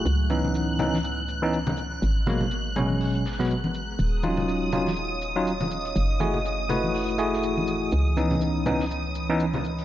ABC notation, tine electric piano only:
X:1
M:4/4
L:1/16
Q:"Swing 16ths" 1/4=122
K:Dbdor
V:1 name="Tine electric piano"
z2 [F,CDE]4 [F,CDE] z4 [F,CDE] z4 | z2 [C,G,A,B,] z3 [C,G,A,D]4 z [C,G,A,C] z4 | z2 [G,DE=F]4 [G,DEF] z4 [G,DEF] z4 | z2 [=A,FG_A] z3 [=A,FGc]4 [A,FG_A]6 |
z2 [F,CDE]4 [F,CDE] z4 [F,CDE] z4 |]